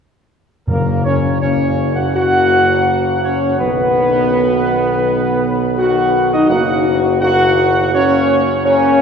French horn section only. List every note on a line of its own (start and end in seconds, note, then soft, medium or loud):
0.69 1.03 A#3 medium
1.06 1.39 C#4 medium
1.43 1.93 C#4 medium
1.98 2.06 F#4 medium
2.15 3.20 F#4 loud
3.23 3.60 C#4 medium
3.59 5.73 B3 loud
5.77 6.28 F#4 medium
6.34 6.49 D#4 medium
6.50 7.20 F#4 loud
7.22 7.89 F#4 loud
7.93 8.48 C#4 loud
8.65 9.02 C#4 loud